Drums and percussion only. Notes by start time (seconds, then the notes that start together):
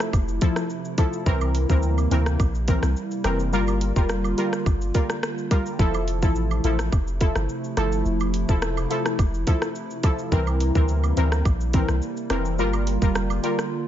0.00 cross-stick, shaker
0.13 kick, high woodblock, shaker
0.28 shaker
0.41 kick, closed hi-hat, cabasa, shaker
0.56 cross-stick, shaker
0.70 shaker
0.85 shaker
0.98 kick, closed hi-hat, cabasa, high woodblock, shaker
1.13 shaker
1.26 kick, shaker
1.41 high woodblock, shaker
1.55 closed hi-hat, cabasa, shaker
1.69 kick, shaker
1.83 shaker
1.98 high woodblock, shaker
2.11 closed hi-hat, cabasa, shaker
2.26 cross-stick, shaker
2.40 kick, high woodblock, shaker
2.55 shaker
2.68 kick, closed hi-hat, cabasa, shaker
2.83 cross-stick, shaker
2.96 shaker
3.11 shaker
3.24 cross-stick, closed hi-hat, cabasa, high woodblock, shaker
3.39 shaker
3.53 shaker
3.67 high woodblock, shaker
3.81 closed hi-hat, cabasa, shaker
3.96 kick, shaker
4.09 cross-stick, shaker
4.24 high woodblock, shaker
4.38 closed hi-hat, cabasa, shaker
4.53 cross-stick, shaker
4.66 kick, high woodblock, shaker
4.81 shaker
4.94 kick, closed hi-hat, cabasa, shaker
5.10 cross-stick, shaker
5.23 cross-stick, shaker
5.38 shaker
5.51 kick, closed hi-hat, cabasa, high woodblock, shaker
5.66 shaker
5.79 kick, shaker
5.94 high woodblock, shaker
6.08 closed hi-hat, cabasa, shaker
6.22 kick, shaker
6.36 shaker
6.51 high woodblock, shaker
6.64 closed hi-hat, cabasa, shaker
6.79 cross-stick, shaker
6.92 kick, high woodblock, shaker
7.07 shaker
7.21 kick, closed hi-hat, cabasa, shaker
7.36 cross-stick, shaker
7.49 shaker
7.64 shaker
7.77 cross-stick, closed hi-hat, cabasa, high woodblock, shaker
7.92 shaker
8.05 shaker
8.20 high woodblock, shaker
8.34 closed hi-hat, cabasa, shaker
8.49 kick, shaker
8.62 cross-stick, shaker
8.77 high woodblock, shaker
8.90 closed hi-hat, cabasa, shaker
9.06 cross-stick, shaker
9.19 kick, high woodblock, shaker
9.34 shaker
9.47 kick, closed hi-hat, cabasa, shaker
9.62 cross-stick, shaker
9.75 shaker
9.91 shaker
10.03 kick, closed hi-hat, cabasa, high woodblock, shaker
10.19 shaker
10.32 kick, shaker
10.47 high woodblock, shaker
10.60 closed hi-hat, cabasa, shaker
10.75 kick, shaker
10.88 shaker
11.04 high woodblock, shaker
11.17 closed hi-hat, cabasa, shaker
11.32 cross-stick, shaker
11.45 kick, high woodblock, shaker
11.61 shaker
11.73 kick, closed hi-hat, cabasa, shaker
11.88 cross-stick, shaker
12.02 shaker
12.17 shaker
12.30 cross-stick, closed hi-hat, cabasa, high woodblock, shaker
12.45 shaker
12.59 shaker
12.73 high woodblock, shaker
12.87 closed hi-hat, cabasa, shaker
13.02 kick, shaker
13.15 cross-stick, shaker
13.30 high woodblock, shaker
13.43 closed hi-hat, cabasa, shaker
13.59 cross-stick, shaker